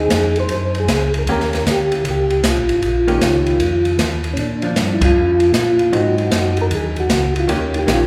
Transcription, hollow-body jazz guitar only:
0.00 0.80 C4 medium
0.00 0.80 D#4 medium
1.29 2.36 A#3 medium
1.29 2.36 C#4 medium
1.29 2.36 G4 medium
3.08 3.57 D#3 medium
3.08 3.57 A#3 medium
3.08 3.58 C#4 medium
3.08 3.58 G4 medium
4.63 5.13 F3 soft
4.63 5.13 D4 medium
5.92 7.01 F#3 medium
5.92 7.02 C4 medium
5.92 7.02 D#4 medium
7.48 7.86 D#3 medium
7.48 7.86 A#3 soft
7.48 7.87 C#4 medium
7.48 7.87 G4 medium
7.87 8.07 D#3 medium
7.87 8.07 A#3 medium
7.87 8.07 C#4 medium
7.87 8.07 G4 medium

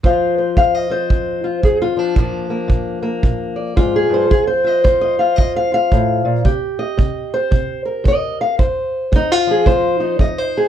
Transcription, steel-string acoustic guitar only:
0.03 0.53 F2 medium
0.03 1.96 F3 soft
0.03 0.89 F4 soft
0.03 0.37 C5 soft
0.03 0.57 F5 soft
0.38 0.90 C5 soft
0.57 1.06 F2 medium
0.57 0.74 F5 medium
0.74 1.46 D#5 medium
0.90 1.44 F4 soft
0.90 1.99 C5 medium
1.10 1.60 F2 medium
1.44 1.64 F4 soft
1.63 2.13 F2 medium
1.63 1.81 G#4 medium
1.82 2.17 F4 medium
1.97 2.17 F3 soft
1.97 3.59 D4 medium
2.16 2.66 A#2 medium
2.16 6.45 F3 soft
2.16 2.49 A#3 soft
2.50 3.01 A#3 soft
2.68 3.18 A#2 medium
3.03 3.76 A#3 soft
3.24 3.73 A#2 medium
3.56 4.13 D5 soft
3.76 4.09 G#2 medium
3.76 4.30 F4 medium
3.96 4.29 G#4 medium
4.09 4.30 G2 medium
4.14 4.31 C5 medium
4.30 4.80 F2 medium
4.30 4.47 G#4 medium
4.47 4.83 C5 medium
4.64 5.17 F4 soft
4.64 5.00 D#5 medium
4.84 5.34 F2 medium
4.84 5.56 C5 medium
5.01 5.19 D#5 medium
5.19 5.71 F4 soft
5.19 5.36 F5 medium
5.36 5.88 F2 medium
5.36 5.55 D#5 medium
5.56 5.73 F5 medium
5.72 6.43 F4 soft
5.72 6.45 F5 medium
5.92 6.25 A2 medium
6.25 6.45 A#2 medium
6.45 6.94 C3 medium
6.45 8.56 G4 soft
6.79 7.32 D#5 medium
6.97 7.47 C3 medium
7.34 7.85 C5 medium
7.51 8.01 C3 medium
7.85 8.57 A#4 soft
8.04 8.54 C3 medium
8.08 8.40 D#5 medium
8.41 8.59 F5 medium
8.59 9.08 F2 medium
8.59 9.66 C5 soft
9.12 9.45 F3 medium
9.12 9.32 D#4 medium
9.32 9.99 F4 medium
9.47 10.19 F3 soft
9.51 9.67 G#4 medium
9.66 10.15 C3 medium
9.66 10.20 C5 loud
10.00 10.68 D#4 soft
10.20 10.68 F3 medium
10.20 10.38 D#5 medium
10.38 10.68 C5 medium
10.57 10.68 G#4 medium

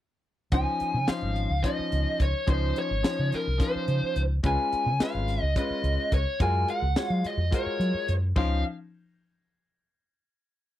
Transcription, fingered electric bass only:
0.52 0.64 C#2 medium
0.81 muted fingered electric bass stroke soft
0.94 1.06 C#3 medium
1.08 muted fingered electric bass stroke soft
1.22 1.45 G#1 medium
1.50 1.62 C#2 medium
1.79 muted fingered electric bass stroke soft
1.93 2.04 C#2 medium
2.20 2.32 C#2 medium
2.48 2.71 C#2 medium
2.91 3.02 G#1 medium
3.05 muted fingered electric bass stroke soft
3.19 3.30 C#3 medium
3.34 muted fingered electric bass stroke soft
3.47 3.58 C2 medium
3.75 muted fingered electric bass stroke soft
3.88 4.00 C#3 medium
4.02 muted fingered electric bass stroke soft
4.16 4.39 C#2 medium
4.43 4.55 C#2 loud
4.73 muted fingered electric bass stroke soft
4.86 4.98 C#3 medium
5.00 muted fingered electric bass stroke soft
5.14 5.37 G#1 medium
5.42 5.54 C#2 medium
5.70 muted fingered electric bass stroke soft
5.84 5.95 C#2 medium
6.12 6.24 C#2 medium
6.40 6.63 F#2 medium
6.82 6.94 C#2 medium
6.96 muted fingered electric bass stroke soft
7.10 7.22 F#3 medium
7.25 muted fingered electric bass stroke soft
7.37 7.49 F2 medium
7.66 muted fingered electric bass stroke soft
7.80 7.91 F#3 medium
7.94 muted fingered electric bass stroke soft
8.09 8.31 F#2 medium
8.36 8.62 C#2 medium

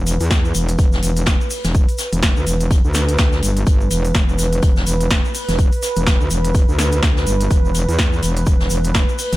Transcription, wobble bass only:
0.00 0.18 E1 medium
0.20 0.53 E2 medium
0.55 0.77 E1 loud
0.79 1.01 E1 loud
1.03 1.38 E1 medium
1.64 1.86 E1 medium
2.12 2.34 E1 medium
2.37 2.45 D2 medium
2.47 2.82 E1 loud
2.85 3.17 D2 medium
3.19 3.41 D2 loud
3.43 3.65 G1 medium
3.67 3.89 G1 medium
3.91 4.13 E1 medium
4.15 4.61 E1 loud
4.63 4.85 E1 medium
4.87 5.22 E1 medium
5.49 5.70 E1 loud
5.97 6.18 E1 medium
6.21 6.29 D2 loud
6.31 6.66 E1 loud
6.68 7.01 D2 medium
7.03 7.25 D2 loud
7.27 7.49 G1 loud
7.51 7.86 E1 loud
7.88 8.21 E2 loud
8.23 8.45 E1 medium
8.47 8.69 E1 loud
8.71 9.06 E1 loud
9.33 9.37 E1 medium

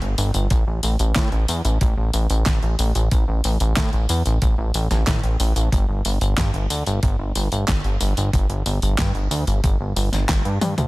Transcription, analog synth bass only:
0.02 0.15 G1 medium
0.18 0.31 G1 loud
0.34 0.48 G1 medium
0.51 0.64 A1 loud
0.67 0.80 A1 medium
0.83 0.97 A1 medium
0.99 1.13 A1 medium
1.16 1.29 A2 loud
1.32 1.45 A1 medium
1.48 1.62 E2 medium
1.65 1.78 A1 medium
1.81 1.95 A1 loud
1.97 2.11 A1 medium
2.14 2.27 A1 medium
2.30 2.43 A1 medium
2.47 2.60 A1 loud
2.62 2.76 A1 medium
2.79 2.92 A1 medium
2.95 3.09 A1 medium
3.12 3.25 A1 loud
3.28 3.41 A1 medium
3.44 3.57 A1 medium
3.60 3.74 A1 medium
3.77 3.90 A2 loud
3.93 4.06 A1 medium
4.09 4.23 E2 medium
4.26 4.39 A1 medium
4.42 4.55 A1 loud
4.58 4.71 A1 medium
4.74 4.88 A1 loud
4.91 5.04 A1 medium
5.07 5.21 A1 loud
5.23 5.37 A1 medium
5.40 5.53 A1 medium
5.56 5.69 A1 medium
5.72 5.86 G1 loud
5.89 6.02 G1 medium
6.05 6.18 G1 medium
6.21 6.35 G1 medium
6.38 6.51 G2 loud
6.54 6.67 G1 medium
6.70 6.84 D2 medium
6.87 7.00 G1 medium
7.03 7.16 G1 loud
7.19 7.32 G1 medium
7.35 7.49 G1 loud
7.52 7.65 G1 medium
7.68 7.81 G1 loud
7.84 7.98 G1 medium
8.01 8.14 G1 medium
8.17 8.30 G1 medium
8.34 8.47 G1 loud
8.49 8.63 G1 medium
8.66 8.79 G1 medium
8.82 8.95 G1 medium
8.99 9.12 G2 loud
9.15 9.28 G1 medium
9.31 9.44 D2 medium
9.47 9.61 G1 medium
9.64 9.77 G1 loud
9.80 9.93 G1 medium
9.96 10.10 G1 loud
10.12 10.26 G1 medium
10.29 10.42 G1 loud
10.45 10.59 G2 medium
10.61 10.75 G2 medium
10.78 10.88 D2 medium

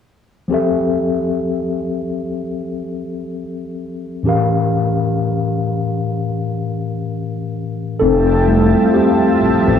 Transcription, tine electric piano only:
0.48 4.20 F3 medium
0.48 4.21 C4 medium
0.48 4.22 G4 medium
0.52 4.22 A4 medium
0.52 4.23 E5 medium
4.23 7.95 A2 medium
4.23 7.96 E3 medium
4.23 7.96 C#4 medium
4.23 7.97 G4 medium
4.27 7.98 A#4 medium
4.27 7.98 F5 medium
8.00 8.91 C4 medium
8.00 8.97 A4 loud
8.48 9.79 G3 medium
8.48 9.79 A3 medium
8.48 9.79 E4 medium
8.94 9.79 C4 medium
8.94 9.79 G4 medium

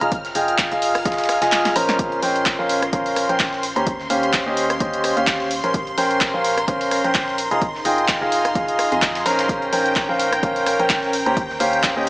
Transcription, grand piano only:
0.01 0.14 F4 medium
0.01 0.14 G#4 medium
0.01 0.14 D#5 medium
0.01 0.14 A#5 medium
0.35 0.68 F4 medium
0.35 0.68 G#4 medium
0.35 0.68 D#5 medium
0.35 0.68 G5 medium
0.72 0.93 F4 medium
0.72 0.93 G#4 medium
0.72 0.93 D#5 medium
0.72 0.93 F5 loud
1.06 1.39 F4 medium
1.06 1.39 G#4 medium
1.06 1.39 D#5 medium
1.06 1.39 F5 loud
1.42 1.73 F4 medium
1.42 1.73 G#4 medium
1.42 1.73 D#5 medium
1.42 1.73 G#5 medium
1.76 2.20 C#4 loud
1.76 2.20 A#4 medium
1.76 2.20 C5 medium
1.76 2.20 A#5 loud
2.23 2.56 C#4 medium
2.23 2.56 A#4 medium
2.23 2.56 C5 medium
2.23 2.56 G5 medium
2.59 2.80 C#4 medium
2.59 2.80 A#4 medium
2.59 2.80 C5 medium
2.59 2.80 F5 medium
2.93 3.26 C#4 medium
2.93 3.26 A#4 medium
2.93 3.26 C5 medium
2.93 3.26 F5 medium
3.29 3.62 C#4 medium
3.29 3.62 A#4 medium
3.29 3.62 C5 medium
3.29 3.62 G5 medium
3.76 3.88 C#4 medium
3.76 3.88 G4 medium
3.76 3.88 C5 medium
3.76 3.88 A#5 medium
4.10 4.43 C#4 medium
4.10 4.43 G4 medium
4.10 4.43 C5 medium
4.10 4.43 F5 medium
4.46 4.68 C#4 medium
4.46 4.68 G4 medium
4.46 4.68 C5 medium
4.46 4.68 D#5 medium
4.80 5.14 C#4 medium
4.80 5.14 G4 medium
4.80 5.14 C5 medium
4.80 5.14 D#5 loud
5.17 5.49 C#4 medium
5.17 5.49 G4 medium
5.17 5.50 C5 medium
5.17 5.49 F5 medium
5.64 5.76 C#4 medium
5.64 5.76 A#4 medium
5.64 5.76 C5 medium
5.64 5.76 C6 medium
5.98 6.31 C#4 medium
5.98 6.31 A#4 medium
5.98 6.31 C5 medium
5.98 6.31 G5 loud
6.34 6.55 C#4 medium
6.34 6.55 A#4 medium
6.34 6.55 C5 medium
6.34 6.55 F5 medium
6.68 7.01 C#4 medium
6.68 7.01 A#4 medium
6.68 7.01 C5 medium
6.68 7.01 F5 loud
7.04 7.37 C#4 medium
7.04 7.37 A#4 medium
7.04 7.37 C5 medium
7.04 7.37 G5 medium
7.51 7.64 F4 medium
7.51 7.64 G#4 medium
7.51 7.64 D#5 medium
7.51 7.64 A#5 medium
7.85 8.18 F4 medium
7.85 8.18 G#4 medium
7.85 8.18 D#5 medium
7.85 8.18 G5 loud
8.22 8.43 F4 medium
8.22 8.43 G#4 medium
8.22 8.43 D#5 medium
8.22 8.43 F5 medium
8.55 8.89 F4 medium
8.55 8.89 G#4 medium
8.55 8.89 D#5 medium
8.55 8.89 F5 loud
8.92 9.23 F4 medium
8.92 9.23 G#4 medium
8.92 9.23 D#5 medium
8.92 9.23 G#5 medium
9.26 9.70 C#4 loud
9.26 9.70 A#4 medium
9.26 9.70 C5 medium
9.26 9.70 A#5 loud
9.73 10.06 C#4 medium
9.73 10.06 A#4 medium
9.73 10.06 C5 medium
9.73 10.06 G5 medium
10.09 10.30 C#4 medium
10.09 10.30 A#4 medium
10.09 10.30 C5 medium
10.09 10.30 F5 loud
10.43 10.76 C#4 medium
10.43 10.76 A#4 medium
10.43 10.76 C5 medium
10.43 10.76 F5 loud
10.79 11.12 C#4 medium
10.79 11.12 A#4 medium
10.79 11.12 C5 medium
10.79 11.12 G5 medium
11.26 11.39 C#4 medium
11.26 11.39 G4 medium
11.26 11.39 C5 medium
11.26 11.39 A#5 medium
11.60 11.93 C#4 medium
11.60 11.93 G4 medium
11.60 11.93 C5 medium
11.60 11.93 F5 loud
11.97 12.09 C#4 medium
11.97 12.09 G4 medium
11.97 12.09 C5 medium
11.97 12.09 D#5 medium

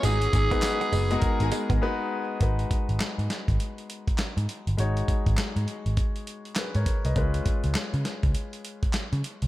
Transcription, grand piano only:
0.51 0.86 G#3 medium
0.51 0.86 B3 medium
0.51 0.86 D#4 medium
0.51 0.87 F#4 medium
0.51 0.87 B4 loud
1.11 1.53 G#3 loud
1.11 1.53 B3 medium
1.11 1.54 D#4 medium
1.11 1.54 F#4 medium
1.11 1.16 G#4 medium
1.19 1.57 A#4 loud
1.82 2.20 G#3 loud
1.82 2.20 B3 loud
1.82 2.20 D#4 loud
1.82 2.20 F#4 loud
1.82 2.20 B4 loud
2.40 4.74 G#3 medium
2.40 4.74 D#4 medium
2.40 4.75 F#4 medium
2.40 4.75 B4 medium
4.77 6.53 G#3 medium
4.77 6.53 D#4 medium
4.77 6.53 F#4 medium
4.77 6.25 C#5 medium
6.57 6.75 G#4 medium
6.57 6.74 B4 medium
6.76 7.04 A#4 medium
6.76 7.03 C#5 medium
7.06 7.17 B4 medium
7.06 7.33 D#5 medium
7.16 9.48 G#3 medium
7.16 9.48 C#4 medium
7.16 9.48 F4 medium
7.16 9.48 B4 medium

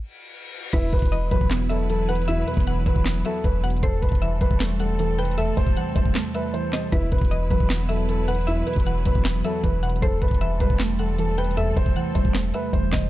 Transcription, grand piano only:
0.73 0.89 E4 medium
0.93 1.29 B4 medium
1.31 1.47 B4 medium
1.70 1.86 A4 medium
1.90 2.06 A4 medium
2.09 2.25 B4 medium
2.29 2.44 E4 medium
2.47 2.84 B4 medium
2.87 3.03 B4 medium
3.26 3.41 A4 medium
3.45 3.81 B4 medium
3.82 3.99 A4 medium
4.02 4.39 B4 medium
4.41 4.57 B4 medium
4.80 4.96 A4 medium
5.00 5.15 A4 medium
5.18 5.34 B4 medium
5.37 5.54 A4 medium
5.57 5.93 C5 medium
5.96 6.12 C5 medium
6.35 6.51 B4 medium
6.54 6.90 C5 medium
6.92 7.08 E4 medium
7.12 7.48 B4 medium
7.51 7.67 B4 medium
7.89 8.05 A4 medium
8.09 8.25 A4 medium
8.28 8.44 B4 medium
8.48 8.64 E4 medium
8.66 9.03 B4 medium
9.06 9.22 B4 medium
9.45 9.61 A4 medium
9.64 10.00 B4 medium
10.02 10.18 A4 medium
10.22 10.58 B4 medium
10.61 10.77 B4 medium
10.99 11.15 A4 medium
11.19 11.35 A4 medium
11.38 11.54 B4 medium
11.57 11.73 A4 medium
11.77 12.13 C5 medium
12.15 12.31 C5 medium
12.55 12.70 B4 medium
12.73 13.10 C5 medium

